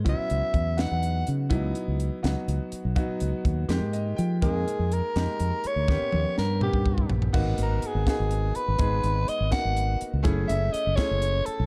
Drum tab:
CC |------------|------------|------------|------------|
HH |x-x-x-x-x-x-|x-x-x-x-x-x-|x-x-x-x-x-x-|x-x-x-x-x-x-|
SD |------o-----|------o-----|------o-----|------o-----|
T1 |------------|------------|------------|------------|
T2 |------------|------------|------------|------------|
FT |------------|------------|------------|------------|
BD |o---o-------|o-----------|o---o-------|o-----------|

CC |------------|x-----------|------------|------------|
HH |------------|--x-x-x-x-x-|x-x-x-x-x-x-|x-x-x-x-x-x-|
SD |o---o-------|------o-----|------o-----|------o-----|
T1 |--o---------|------------|------------|------------|
T2 |------o-----|------------|------------|------------|
FT |----------oo|------------|------------|------------|
BD |o------ooo--|o-----o-----|o-----o-----|o-----o-----|